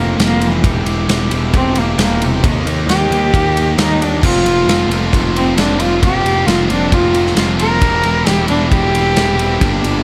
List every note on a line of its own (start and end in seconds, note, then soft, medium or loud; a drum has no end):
0.00 0.16 F1 medium
0.00 0.17 F3 medium
0.00 0.18 A#3 medium
0.00 0.19 A#3 medium
0.00 0.20 C4 medium
0.00 0.20 F4 medium
0.18 0.61 F1 medium
0.18 0.62 F3 medium
0.18 0.41 A#3 medium
0.18 0.40 C4 medium
0.18 0.38 F4 loud
0.18 snare loud
0.18 ride loud
0.22 0.47 A#3 loud
0.40 0.63 A#3 medium
0.40 0.62 C4 medium
0.40 0.61 F4 medium
0.40 ride medium
0.46 0.65 E3 loud
0.63 0.84 E1 medium
0.63 1.07 E3 loud
0.63 0.87 G3 loud
0.63 0.85 C4 loud
0.63 0.85 G4 loud
0.63 kick loud
0.63 ride loud
0.85 1.07 E1 medium
0.85 1.08 G3 medium
0.85 1.08 C4 medium
0.85 1.10 G4 medium
0.85 ride medium
1.08 1.29 E1 medium
1.08 1.31 E3 medium
1.08 1.31 G3 medium
1.08 1.29 C4 medium
1.08 1.29 G4 medium
1.08 snare loud
1.08 ride loud
1.30 1.53 E1 medium
1.30 1.52 E3 medium
1.30 1.53 G3 medium
1.30 1.53 C4 medium
1.30 1.54 G4 medium
1.30 ride medium
1.53 1.96 E1 loud
1.53 1.76 E3 medium
1.53 1.75 G3 medium
1.53 1.74 C4 medium
1.53 1.80 C4 loud
1.53 1.74 G4 medium
1.53 kick loud
1.53 ride loud
1.75 1.97 E3 medium
1.75 1.98 G3 medium
1.75 1.99 A#3 loud
1.75 1.99 C4 medium
1.75 2.00 G4 medium
1.75 ride medium
1.97 2.40 E1 loud
1.97 2.42 E3 medium
1.97 2.22 G3 medium
1.97 2.20 C4 medium
1.97 snare loud
1.97 ride loud
2.01 2.24 A#3 loud
2.01 2.19 G4 loud
2.20 2.43 C3 loud
2.20 2.43 G3 medium
2.20 2.42 C4 medium
2.20 2.41 G4 medium
2.20 ride medium
2.43 2.65 D#2 medium
2.43 2.86 D#3 loud
2.43 2.68 A#3 medium
2.43 2.66 D#4 loud
2.43 2.64 G4 loud
2.43 kick loud
2.43 ride loud
2.65 2.87 D#2 medium
2.65 2.88 A#3 medium
2.65 2.88 D#4 medium
2.65 2.88 G4 medium
2.65 ride medium
2.87 3.09 D#2 loud
2.87 3.12 D#3 medium
2.87 3.12 A#3 medium
2.87 3.10 D#4 medium
2.87 3.76 G4 loud
2.87 3.09 G4 loud
2.87 snare loud
2.87 ride loud
3.10 3.31 D#2 medium
3.10 3.32 D#3 medium
3.10 3.33 A#3 medium
3.10 3.33 D#4 medium
3.10 3.34 G4 medium
3.10 ride medium
3.33 3.76 D#2 medium
3.33 3.56 D#3 medium
3.33 3.56 A#3 medium
3.33 3.55 D#4 medium
3.33 3.54 G4 medium
3.33 kick loud
3.33 ride medium
3.55 3.76 D#3 medium
3.55 3.78 A#3 medium
3.55 3.78 D#4 medium
3.55 3.78 G4 medium
3.55 ride medium
3.77 4.20 D#2 medium
3.77 4.21 D#3 medium
3.77 4.03 A#3 medium
3.77 4.01 D#4 medium
3.77 4.03 D#4 loud
3.77 4.00 G4 medium
3.77 snare loud
3.77 ride loud
4.01 4.23 A#3 medium
4.01 4.23 D4 medium
4.01 4.22 D#4 medium
4.01 4.22 G4 medium
4.01 ride medium
4.22 4.44 F1 loud
4.22 4.67 F3 medium
4.22 4.47 A#3 loud
4.22 4.46 C4 loud
4.22 4.45 F4 loud
4.22 5.11 F4 loud
4.22 kick loud
4.22 crash loud
4.45 4.66 F1 medium
4.45 4.68 A#3 medium
4.45 4.68 C4 medium
4.45 4.69 F4 medium
4.45 ride medium
4.67 4.87 F1 medium
4.67 4.93 F3 medium
4.67 4.92 A#3 medium
4.67 4.91 C4 medium
4.67 4.90 F4 medium
4.67 snare loud
4.67 ride loud
4.88 5.10 F1 medium
4.88 5.13 C4 medium
4.88 5.13 F4 medium
4.88 ride medium
4.93 5.11 F3 medium
4.93 5.12 A#3 medium
5.12 5.55 F1 loud
5.12 5.35 F3 medium
5.12 5.35 A#3 medium
5.12 5.35 C4 medium
5.12 5.33 F4 medium
5.12 kick loud
5.12 ride loud
5.34 5.55 F3 medium
5.34 5.56 A#3 medium
5.34 5.57 C4 medium
5.34 5.57 C4 loud
5.34 5.57 F4 medium
5.34 ride medium
5.56 6.00 F1 medium
5.56 6.00 F3 medium
5.56 5.80 A#3 medium
5.56 5.80 C4 medium
5.56 5.81 D4 loud
5.56 5.77 F4 medium
5.56 snare loud
5.56 ride loud
5.78 6.00 A#3 medium
5.78 6.02 C4 medium
5.78 6.02 F4 medium
5.78 6.02 F4 loud
5.78 ride medium
6.01 6.23 F1 loud
6.01 6.44 F3 loud
6.01 6.24 A#3 loud
6.01 6.24 C4 loud
6.01 6.22 F4 medium
6.01 6.48 G4 loud
6.01 kick loud
6.01 ride loud
6.23 6.46 F1 medium
6.23 6.46 A#3 medium
6.23 6.47 C4 medium
6.23 6.47 F4 medium
6.23 ride medium
6.45 6.69 F1 loud
6.45 6.71 F3 medium
6.45 6.69 A#3 medium
6.45 6.70 C4 medium
6.45 6.69 F4 medium
6.45 6.68 F4 medium
6.45 snare loud
6.45 ride loud
6.69 6.91 F1 medium
6.69 6.90 F3 medium
6.69 6.91 A#3 medium
6.69 6.92 C4 medium
6.69 6.95 D4 medium
6.69 6.92 F4 medium
6.69 ride medium
6.91 7.34 F1 loud
6.91 7.15 F3 medium
6.91 7.13 A#3 medium
6.91 7.13 C4 medium
6.91 7.12 F4 medium
6.91 7.15 F4 loud
6.91 kick loud
6.91 ride loud
7.13 7.33 F3 medium
7.13 7.35 A#3 medium
7.13 7.35 C4 medium
7.13 7.36 F4 medium
7.13 ride medium
7.27 snare soft
7.34 7.79 F1 loud
7.34 7.79 F3 medium
7.34 7.59 A#3 medium
7.34 7.58 C4 medium
7.34 7.57 F4 medium
7.34 snare loud
7.34 ride loud
7.58 7.79 A#3 medium
7.58 7.80 C4 medium
7.58 7.80 F4 medium
7.58 8.28 A#4 loud
7.58 ride medium
7.79 8.03 E1 loud
7.79 8.25 E3 loud
7.79 8.05 G3 loud
7.79 8.03 C4 loud
7.79 8.02 E4 loud
7.79 kick loud
7.79 ride loud
8.03 8.26 E1 medium
8.03 8.27 G3 medium
8.03 8.27 C4 medium
8.03 8.27 E4 medium
8.03 ride medium
8.26 8.48 E1 loud
8.26 8.50 E3 medium
8.26 8.50 G3 medium
8.26 8.48 C4 medium
8.26 8.47 E4 medium
8.26 8.48 G4 loud
8.26 snare loud
8.26 ride medium
8.48 8.70 E1 medium
8.48 8.68 E3 medium
8.48 8.70 G3 medium
8.48 8.70 C4 medium
8.48 8.71 D4 medium
8.48 8.71 E4 medium
8.48 ride medium
8.69 9.14 E1 medium
8.69 8.94 E3 medium
8.69 8.93 G3 medium
8.69 8.92 C4 medium
8.69 8.91 E4 medium
8.69 10.02 G4 loud
8.69 kick loud
8.69 ride medium
8.92 9.13 E3 medium
8.92 9.15 G3 medium
8.92 9.15 C4 medium
8.92 9.16 E4 medium
8.92 ride medium
9.14 9.59 E1 loud
9.14 9.59 E3 medium
9.14 9.38 G3 medium
9.14 9.37 C4 medium
9.14 9.35 E4 medium
9.14 snare loud
9.14 ride loud
9.37 9.60 G3 medium
9.37 9.60 C4 medium
9.37 9.59 E4 medium
9.37 ride medium
9.60 9.82 G1 loud
9.60 10.03 G2 loud
9.60 10.03 D3 loud
9.60 9.84 G3 loud
9.60 9.84 A#3 loud
9.60 9.82 D4 loud
9.60 kick loud
9.60 ride loud
9.83 10.03 G1 medium
9.83 10.03 G3 medium
9.83 10.03 A#3 medium
9.83 10.03 D4 medium
9.83 ride medium